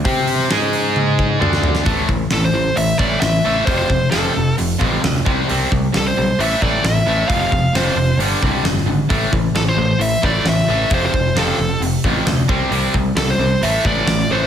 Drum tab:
HH |o-o-o-o---------|o---o---o---o---|o---o---o---o---|o---o---o---o---|
SD |---oo--------o-o|----o-------o---|----o-------oo--|----o-------o---|
T1 |--------o-------|----------------|----------------|----------------|
T2 |------------o---|----------------|----------------|----------------|
FT |--------------o-|----------------|----------------|----------------|
BD |o---------o-----|o-o-------o-----|o-o-------o---o-|--o-------o-----|

HH |o---o---o---o---|o---o---o---o---|o---o---o---o---|o---o---o---o---|
SD |----o-------oo--|----o-------oo--|----o-------o---|----o-------oo--|
T1 |----------------|----------------|----------------|----------------|
T2 |----------------|----------------|----------------|----------------|
FT |----------------|----------------|----------------|----------------|
BD |o-o-------o-----|o-o-------o-----|o-o-------o---o-|--o-------o-----|